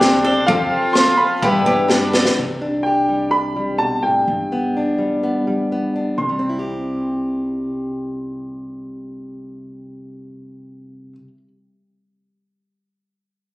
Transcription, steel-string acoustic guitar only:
0, 0, Header, 1, 2, 480
1, 0, Start_track
1, 0, Key_signature, 0, "major"
1, 0, Tempo, 473186
1, 492, Time_signature, 4, 2, 24, 8
1, 4815, Tempo, 478088
1, 13647, End_track
2, 0, Start_track
2, 0, Title_t, "Steel-string acoustic guitar"
2, 0, Program_c, 0, 25
2, 2411, Note_on_c, 0, 48, 61
2, 2654, Note_on_c, 0, 62, 49
2, 2904, Note_on_c, 0, 67, 54
2, 3131, Note_on_c, 0, 55, 53
2, 3373, Note_off_c, 0, 62, 0
2, 3378, Note_on_c, 0, 62, 52
2, 3609, Note_off_c, 0, 55, 0
2, 3613, Note_on_c, 0, 55, 53
2, 3845, Note_on_c, 0, 47, 52
2, 4088, Note_off_c, 0, 47, 0
2, 4097, Note_on_c, 0, 45, 54
2, 4307, Note_off_c, 0, 62, 0
2, 4333, Note_off_c, 0, 48, 0
2, 4335, Note_off_c, 0, 45, 0
2, 4341, Note_on_c, 0, 43, 63
2, 4588, Note_on_c, 0, 59, 47
2, 4836, Note_on_c, 0, 62, 46
2, 5051, Note_off_c, 0, 55, 0
2, 5055, Note_on_c, 0, 55, 52
2, 5292, Note_off_c, 0, 59, 0
2, 5304, Note_on_c, 0, 59, 46
2, 5533, Note_off_c, 0, 55, 0
2, 5544, Note_on_c, 0, 55, 47
2, 5777, Note_off_c, 0, 59, 0
2, 5794, Note_on_c, 0, 59, 46
2, 6019, Note_off_c, 0, 62, 0
2, 6031, Note_on_c, 0, 62, 44
2, 6228, Note_off_c, 0, 55, 0
2, 6233, Note_off_c, 0, 59, 0
2, 6256, Note_off_c, 0, 43, 0
2, 6260, Note_off_c, 0, 67, 0
2, 6261, Note_off_c, 0, 62, 0
2, 6261, Note_on_c, 0, 48, 49
2, 6367, Note_on_c, 0, 55, 45
2, 6465, Note_on_c, 0, 60, 43
2, 6570, Note_on_c, 0, 64, 42
2, 6666, Note_on_c, 0, 67, 43
2, 11263, Note_off_c, 0, 48, 0
2, 11368, Note_off_c, 0, 55, 0
2, 11467, Note_off_c, 0, 60, 0
2, 11571, Note_off_c, 0, 64, 0
2, 11667, Note_off_c, 0, 67, 0
2, 13647, End_track
0, 0, End_of_file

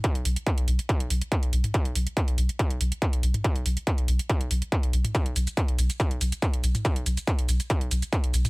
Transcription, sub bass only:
0, 0, Header, 1, 2, 480
1, 0, Start_track
1, 0, Tempo, 425532
1, 45, Time_signature, 4, 2, 24, 8
1, 9586, End_track
2, 0, Start_track
2, 0, Title_t, "Sub bass"
2, 0, Program_c, 0, 38
2, 171, Note_on_c, 0, 35, 78
2, 278, Note_off_c, 0, 35, 0
2, 285, Note_on_c, 0, 35, 97
2, 408, Note_off_c, 0, 35, 0
2, 651, Note_on_c, 0, 35, 79
2, 758, Note_off_c, 0, 35, 0
2, 764, Note_on_c, 0, 35, 105
2, 888, Note_off_c, 0, 35, 0
2, 1130, Note_on_c, 0, 35, 77
2, 1238, Note_off_c, 0, 35, 0
2, 1245, Note_on_c, 0, 35, 101
2, 1368, Note_off_c, 0, 35, 0
2, 1610, Note_on_c, 0, 35, 74
2, 1718, Note_off_c, 0, 35, 0
2, 1725, Note_on_c, 0, 35, 94
2, 1848, Note_off_c, 0, 35, 0
2, 2090, Note_on_c, 0, 35, 75
2, 2197, Note_off_c, 0, 35, 0
2, 2204, Note_on_c, 0, 35, 96
2, 2328, Note_off_c, 0, 35, 0
2, 2570, Note_on_c, 0, 35, 79
2, 2677, Note_off_c, 0, 35, 0
2, 2684, Note_on_c, 0, 35, 103
2, 2808, Note_off_c, 0, 35, 0
2, 3051, Note_on_c, 0, 35, 76
2, 3158, Note_off_c, 0, 35, 0
2, 3165, Note_on_c, 0, 35, 100
2, 3288, Note_off_c, 0, 35, 0
2, 3530, Note_on_c, 0, 35, 74
2, 3637, Note_off_c, 0, 35, 0
2, 3644, Note_on_c, 0, 35, 95
2, 3768, Note_off_c, 0, 35, 0
2, 4010, Note_on_c, 0, 35, 73
2, 4117, Note_off_c, 0, 35, 0
2, 4124, Note_on_c, 0, 35, 99
2, 4248, Note_off_c, 0, 35, 0
2, 4490, Note_on_c, 0, 35, 78
2, 4598, Note_off_c, 0, 35, 0
2, 4605, Note_on_c, 0, 35, 106
2, 4728, Note_off_c, 0, 35, 0
2, 4970, Note_on_c, 0, 35, 78
2, 5078, Note_off_c, 0, 35, 0
2, 5085, Note_on_c, 0, 35, 97
2, 5208, Note_off_c, 0, 35, 0
2, 5451, Note_on_c, 0, 35, 77
2, 5558, Note_off_c, 0, 35, 0
2, 5564, Note_on_c, 0, 35, 97
2, 5688, Note_off_c, 0, 35, 0
2, 5930, Note_on_c, 0, 35, 72
2, 6038, Note_off_c, 0, 35, 0
2, 6045, Note_on_c, 0, 35, 96
2, 6168, Note_off_c, 0, 35, 0
2, 6410, Note_on_c, 0, 35, 81
2, 6518, Note_off_c, 0, 35, 0
2, 6525, Note_on_c, 0, 35, 108
2, 6648, Note_off_c, 0, 35, 0
2, 6891, Note_on_c, 0, 35, 78
2, 6998, Note_off_c, 0, 35, 0
2, 7005, Note_on_c, 0, 35, 99
2, 7128, Note_off_c, 0, 35, 0
2, 7370, Note_on_c, 0, 35, 72
2, 7478, Note_off_c, 0, 35, 0
2, 7484, Note_on_c, 0, 35, 96
2, 7608, Note_off_c, 0, 35, 0
2, 7850, Note_on_c, 0, 35, 77
2, 7958, Note_off_c, 0, 35, 0
2, 7965, Note_on_c, 0, 35, 97
2, 8088, Note_off_c, 0, 35, 0
2, 8330, Note_on_c, 0, 35, 79
2, 8438, Note_off_c, 0, 35, 0
2, 8445, Note_on_c, 0, 35, 102
2, 8568, Note_off_c, 0, 35, 0
2, 8811, Note_on_c, 0, 35, 80
2, 8918, Note_off_c, 0, 35, 0
2, 8925, Note_on_c, 0, 35, 100
2, 9048, Note_off_c, 0, 35, 0
2, 9291, Note_on_c, 0, 35, 76
2, 9399, Note_off_c, 0, 35, 0
2, 9406, Note_on_c, 0, 35, 94
2, 9529, Note_off_c, 0, 35, 0
2, 9586, End_track
0, 0, End_of_file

